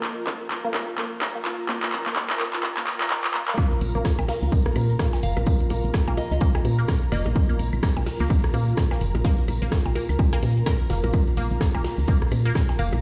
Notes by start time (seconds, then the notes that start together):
Already playing: F4 A#4 A#5
0.03 clap, closed hi-hat
0.27 A#3, kick, clap
0.51 clap, closed hi-hat
0.64 A#3
0.74 kick, clap
0.98 A#3, clap, closed hi-hat
1.21 kick, clap
1.35 A#3
1.45 clap, closed hi-hat
1.69 A#3, kick, clap
1.83 clap, closed hi-hat
1.92 clap, closed hi-hat
2.06 A#3, clap
2.16 kick, clap
2.30 clap
2.39 A#3, clap, closed hi-hat
2.53 clap
2.63 kick, clap
2.77 A#3, clap
2.87 clap, closed hi-hat
3.01 clap
3.10 A#4, kick, clap
3.24 clap
3.34 A#3, clap, closed hi-hat
3.48 A#3, clap
3.57 A#3, kick, tambourine, claves, shaker
3.71 closed hi-hat
3.81 A#1, closed hi-hat, tambourine
3.95 A#1 A#3, shaker
4.05 kick, cross-stick, snare, tambourine, shaker
4.19 A#1, percussion blips, claves
4.28 A#3, snare, closed hi-hat, open hi-hat, percussion blips
4.42 C#2, shaker
4.52 kick, tambourine, shaker
4.66 A#3, cross-stick
4.76 A#2, closed hi-hat, tambourine, claves
4.90 shaker
4.99 A#3, kick, cross-stick, snare, tambourine, shaker
5.13 snare, percussion blips
5.23 F1 F5, closed hi-hat, tambourine
5.37 A#1 A#3, percussion blips, claves, shaker
5.46 kick, tambourine, shaker
5.60 closed hi-hat
5.70 A#1 A#3, closed hi-hat, tambourine, percussion blips
5.84 A#1, shaker
5.94 kick, cross-stick, snare, tambourine, claves, shaker
6.08 A#1 A#3, percussion blips
6.17 D#5, closed hi-hat, tambourine, percussion blips
6.31 C#2 D#5, closed hi-hat, shaker
6.41 A#3, kick, tambourine, percussion blips, shaker
6.55 cross-stick, percussion blips, claves
6.65 A#2, closed hi-hat, tambourine
6.79 A#3, shaker
6.88 kick, cross-stick, snare, tambourine, shaker
7.02 closed hi-hat
7.12 F1 A#3 D#5, snare, closed hi-hat, tambourine, percussion blips, claves
7.26 A#1, percussion blips, shaker
7.36 kick, tambourine, shaker
7.49 A#3, closed hi-hat
7.59 A#1, closed hi-hat, tambourine
7.73 A#1, claves, shaker
7.83 A#3, kick, cross-stick, snare, tambourine, shaker
7.97 A#1, percussion blips
8.06 snare, closed hi-hat, open hi-hat, percussion blips
8.20 C#2 A#3, shaker
8.30 kick, tambourine, claves, shaker
8.44 cross-stick
8.53 A#2 A#3, closed hi-hat, tambourine
8.68 shaker
8.77 kick, cross-stick, snare, tambourine, shaker
8.91 A#3, snare, percussion blips, claves
9.00 F1, closed hi-hat, tambourine
9.15 A#1, percussion blips, shaker
9.24 A#3, kick, tambourine, shaker
9.38 closed hi-hat
9.48 A#1, closed hi-hat, tambourine, percussion blips, claves
9.62 A#1 A#3, shaker
9.72 kick, cross-stick, snare, tambourine, shaker
9.86 A#1, percussion blips
9.95 A#3, closed hi-hat, tambourine, percussion blips
10.09 C#2, closed hi-hat, claves, shaker
10.19 kick, tambourine, percussion blips, shaker
10.33 A#3, cross-stick, percussion blips
10.43 A#2, closed hi-hat, tambourine
10.56 shaker
10.66 A#4, kick, cross-stick, snare, tambourine, claves, shaker
10.80 closed hi-hat
10.89 F1 A#3, snare, closed hi-hat, tambourine, percussion blips
11.04 A#1 A#3, percussion blips, shaker
11.13 kick, tambourine, claves, shaker
11.27 closed hi-hat
11.37 A#1 A#3, closed hi-hat, tambourine
11.51 A#1, shaker
11.61 kick, cross-stick, snare, tambourine, shaker
11.74 A#1 A#3, percussion blips, claves
11.84 snare, closed hi-hat, open hi-hat, percussion blips
11.98 C#2, shaker
12.08 A#3, kick, tambourine, shaker
12.22 cross-stick
12.31 A#2, closed hi-hat, tambourine, claves
12.46 A#3, shaker
12.55 kick, cross-stick, snare, tambourine, shaker
12.69 snare, percussion blips
12.78 F1 A#3 F5, closed hi-hat, tambourine
12.93 A#1, percussion blips, claves, shaker